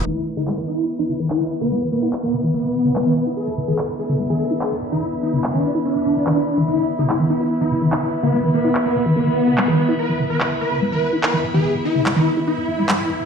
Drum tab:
CP |--x---x-|--x---x-|--x---x-|--x---x-|

CP |--x---x-|--x---x-|--x---x-|--x---x-|